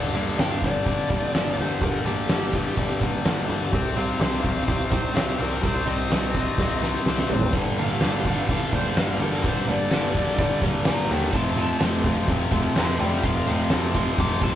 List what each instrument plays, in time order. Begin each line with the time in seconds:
Already playing: picked electric bass G1, distorted electric guitar G2 D3 G3
0.14 distorted electric guitar G2 D3 G3, clean electric guitar A#3 D4, open hi-hat
0.39 picked electric bass G1, distorted electric guitar G2 D3 G3, clean electric guitar A#3 D4, lead electric guitar G5, snare, open hi-hat
0.52 lead electric guitar F5
0.62 picked electric bass G1, distorted electric guitar G2 D3 G3, lead electric guitar D5, kick, open hi-hat
0.86 picked electric bass G1, distorted electric guitar G2 D3 G3, kick, open hi-hat
1.10 picked electric bass G1, distorted electric guitar G2 D3 G3, clean electric guitar A#3 D4, kick, open hi-hat
1.33 picked electric bass G1, distorted electric guitar G2 D3 G3, clean electric guitar A#3 D4, snare, open hi-hat
1.57 picked electric bass G1, distorted electric guitar G2 D3 G3, lead electric guitar C5, snare, open hi-hat
1.81 picked electric bass G1, distorted electric guitar G2 D3 G3, lead electric guitar A#4, kick, open hi-hat
2.05 picked electric bass G1, distorted electric guitar G2 D3 G3, clean electric guitar A#3 D4, lead electric guitar G4, open hi-hat
2.29 picked electric bass G1, distorted electric guitar G2 D3 G3, clean electric guitar A#3 D4, snare, open hi-hat
2.53 distorted electric guitar G2 D3 G3, kick, open hi-hat
2.77 picked electric bass G1, distorted electric guitar G2 D3 G3, kick, open hi-hat
3.01 distorted electric guitar G2 D3 G3, clean electric guitar A#3 D4, kick, open hi-hat
3.25 picked electric bass G1, distorted electric guitar G2 D3 G3, clean electric guitar A#3 D4, snare, open hi-hat
3.49 picked electric bass G1, distorted electric guitar G2 D3 G3, snare, open hi-hat
3.61 snare
3.73 picked electric bass C2, distorted electric guitar C3 G3 C4, kick, open hi-hat
3.96 distorted electric guitar C3 G3 C4, clean electric guitar D#4, lead electric guitar F5, open hi-hat
4.20 picked electric bass C2, distorted electric guitar C3 G3 C4, clean electric guitar D#4, snare, open hi-hat
4.42 picked electric bass C2, distorted electric guitar C3 G3 C4, kick, open hi-hat
4.68 picked electric bass C2, distorted electric guitar C3 G3 C4, kick, open hi-hat
4.92 picked electric bass C2, distorted electric guitar C3 G3 C4, clean electric guitar D#4, lead electric guitar C5, kick, open hi-hat
5.14 picked electric bass C2, distorted electric guitar C3 G3 C4, clean electric guitar D#4, lead electric guitar F5, snare, open hi-hat
5.38 picked electric bass C2, distorted electric guitar C3 G3 C4, lead electric guitar A#4, snare, open hi-hat
5.63 picked electric bass C2, distorted electric guitar C3 G3 C4, lead electric guitar C5, kick, open hi-hat
5.86 picked electric bass C2, distorted electric guitar C3 G3 C4, clean electric guitar D#4, lead electric guitar D#5, open hi-hat
6.10 picked electric bass C2, distorted electric guitar C3 G3 C4, clean electric guitar D#4, snare, open hi-hat
6.34 distorted electric guitar C3 G3 C4, kick, open hi-hat
6.58 picked electric bass C2, distorted electric guitar C3 G3 C4, kick, snare
6.82 distorted electric guitar C3 G3 C4, clean electric guitar D#4, snare
7.06 picked electric bass C2, distorted electric guitar C3 G3 C4, clean electric guitar D#4, snare
7.18 snare
7.29 picked electric bass A1, distorted electric guitar C3 G3 C4, floor tom
7.41 floor tom
7.53 picked electric bass G1, distorted electric guitar G2 D3 G3, kick, open hi-hat
7.77 distorted electric guitar G2 D3 G3, clean electric guitar A#3 D4, lead electric guitar F5, open hi-hat
8.01 picked electric bass G1, distorted electric guitar G2 D3 G3, clean electric guitar A#3 D4, snare, open hi-hat
8.24 picked electric bass G1, distorted electric guitar G2 D3 G3, kick, open hi-hat
8.48 picked electric bass G1, distorted electric guitar G2 D3 G3, kick, open hi-hat
8.72 picked electric bass G1, distorted electric guitar G2 D3 G3, clean electric guitar A#3 D4, lead electric guitar C5, kick, open hi-hat
8.97 picked electric bass G1, distorted electric guitar G2 D3 G3, clean electric guitar A#3 D4, lead electric guitar F5, snare, open hi-hat
9.20 picked electric bass G1, distorted electric guitar G2 D3 G3, lead electric guitar A#4, open hi-hat
9.43 picked electric bass G1, distorted electric guitar G2 D3 G3, kick, open hi-hat
9.48 lead electric guitar C5
9.67 picked electric bass G1, distorted electric guitar G2 D3 G3, clean electric guitar A#3 D4, open hi-hat
9.71 lead electric guitar D5
9.90 picked electric bass G1, distorted electric guitar G2 D3 G3, clean electric guitar A#3 D4, snare, open hi-hat
10.14 distorted electric guitar G2 D3 G3, kick, open hi-hat
10.38 picked electric bass G1, distorted electric guitar G2 D3 G3, kick, open hi-hat
10.61 distorted electric guitar G2 D3 G3, clean electric guitar A#3 D4, kick, open hi-hat
10.85 picked electric bass G1, distorted electric guitar G2 D3 G3, clean electric guitar A#3 D4, lead electric guitar D5 A#5, snare, open hi-hat
11.09 picked electric bass D#2, distorted electric guitar G2 D3 G3, lead electric guitar A#4 G5, snare, open hi-hat
11.32 picked electric bass F1, distorted electric guitar F2 C3 F3, lead electric guitar A5, kick, open hi-hat
11.56 distorted electric guitar F2 C3 F3, clean electric guitar A3 C4, open hi-hat
11.79 picked electric bass F1, distorted electric guitar F2 C3 F3, clean electric guitar A3 C4, snare, open hi-hat
12.04 picked electric bass F1, distorted electric guitar F2 C3 F3, kick, open hi-hat
12.27 picked electric bass F1, distorted electric guitar F2 C3 F3, kick, open hi-hat
12.51 picked electric bass F1, distorted electric guitar F2 C3 F3, clean electric guitar A3 C4, kick, open hi-hat
12.76 picked electric bass F1, distorted electric guitar F2 C3 F3, clean electric guitar A3 C4, lead electric guitar A5 C6, snare, open hi-hat
12.99 picked electric bass F1, distorted electric guitar F2 C3 F3, lead electric guitar D5 G5, snare, open hi-hat
13.13 snare
13.24 picked electric bass F1, distorted electric guitar F2 C3 F3, lead electric guitar F5, kick, open hi-hat
13.47 picked electric bass F1, distorted electric guitar F2 C3 F3, clean electric guitar A3 C4, open hi-hat
13.70 picked electric bass F1, distorted electric guitar F2 C3 F3, clean electric guitar A3 C4, snare, open hi-hat
13.95 distorted electric guitar F2 C3 F3, lead electric guitar C6, kick, open hi-hat
14.18 picked electric bass F1, distorted electric guitar F2 C3 F3, lead electric guitar D6, kick, open hi-hat
14.41 distorted electric guitar F2 C3 F3, clean electric guitar A3 C4, lead electric guitar A5, kick, open hi-hat